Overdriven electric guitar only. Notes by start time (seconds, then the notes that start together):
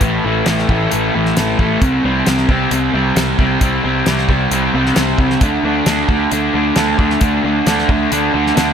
0.02 A2 E3 A3
0.24 A2 E3 A3
0.47 A2 E3 A3
0.70 A2 E3 A3
0.92 A2 E3 A3
1.14 A2 E3 A3
1.36 A2 E3 A3
1.59 A2 E3 A3
1.81 C3 G3 C4
2.04 C3 G3 C4
2.26 C3 G3 C4
2.50 C3 G3 C4
2.72 C3 G3 C4
2.94 C3 G3 C4
3.16 C3 G3 C4
3.39 C3 G3 C4
3.61 C3 G3 C4
3.84 C3 G3 C4
4.06 C3 G3 C4
4.29 C3 G3 C4
4.51 C3 G3 C4
4.74 C3 G3 C4
4.96 C3 G3 C4
5.19 C3 G3 C4
5.42 D3 A3 D4
5.65 D3 A3 D4
5.86 D3 A3 D4
6.09 D3 A3 D4
6.32 D3 A3 D4
6.54 D3 A3 D4
6.76 D3 A3 D4
6.98 D3 A3 D4
7.21 D3 A3 D4
7.44 D3 A3 D4
7.67 D3 A3 D4
7.90 D3 A3 D4
8.12 D3 A3 D4
8.34 D3 A3 D4
8.56 D3 A3 D4